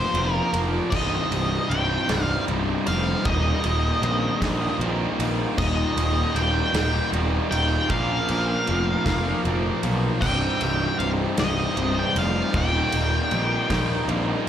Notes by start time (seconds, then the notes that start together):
Already playing: A#2 F3 A#3 F4 A#4 C5
0.14 F1 A#2 F3 A#3 F4, ride
0.18 A#4
0.33 A#4
0.53 F1 F4 A#4, ride
0.58 A#3
0.90 C1 C2 D#5, kick, crash
0.95 G2 C3 G3 D#4
1.31 C1 G3 D#4, ride
1.35 C3
1.70 C1 C2 G2 C3 G5, ride
1.74 G3 D#4
2.09 C1 C2 G2 G3 D#4, snare, ride
2.13 C3
2.24 F5
2.48 C1 C2 G2 C3 G3 D#4, ride
2.86 F1 C3 G3 D#4 F5, ride
3.25 D#1 D#2 A#2 D#3 G3 A#3 D#4 D#5, kick, ride
3.64 D#1 G3 A#3 D#4, ride
3.68 D#3
4.02 A#1 D#2 A#2 D#3 G3 A#3, ride
4.07 D#4
4.41 A#1 D#2 A#2 G3 A#3 D#4, kick, snare, ride
4.45 D#3
4.79 A#1 D#2 A#2 D#3 G3 A#3, ride
4.85 D#4
5.19 A#1 D#3 G3 A#3 D#4, ride
5.58 D#1 D#2 A#2 D#3 G3 A#3 D#4 D#5, kick, crash
5.62 A#3 D#4
5.97 D#1 D#3 G3 A#3 D#4, ride
6.01 D#3
6.35 D#1 D#2 A#2 D#3 G3 A#3 G5, ride
6.40 D#4
6.73 D#1 D#2 A#2 A#3 D#4, snare, ride
6.78 D#3 G3
7.12 D#1 D#2 A#2 D#3 G3 A#3, ride
7.17 D#4
7.51 D#1 D#3 G3 A#3 D#4 G5, ride
7.89 A#1 A#2 F3 A#3 F4 A#4 F5, kick, ride
8.28 A#1 A#3 F4 A#4, ride
8.67 F1 A#2 F3 A#3 F4 A#4, ride
9.05 F1 A#2 F3 A#3 F4 A#4, kick, snare, ride
9.43 F1 A#2 F3 A#3 F4 A#4, ride
9.82 B1 A#3 F4 A#4, ride
10.21 C1 C2 G2 C3 G3 D#4 G5, kick, crash
10.60 C1 C3 G3 D#4, ride
10.99 C1 C2 G2 C3 G3 D#4 F5, ride
11.36 C1 C2 G2 C3 G3 D#4 D#5, snare, ride
11.41 C3
11.76 C1 C2 G2 C3 G3, ride
11.80 D#4
11.99 G5
12.15 F1 C3 G3 D#4 F5, ride
12.54 D#1 D#2 A#2 D#3 G3 A#3 D#4 G5, kick, ride
12.92 D#1 D#3 G3 A#3 D#4, ride
13.31 A#1 D#2 A#2 D#3 G3 A#3, ride
13.35 D#4
13.69 A#1 D#2 A#2 D#3 G3 A#3 D#4, kick, snare, ride
14.08 A#1 D#2 A#2 D#3 G3 A#3, ride
14.12 D#4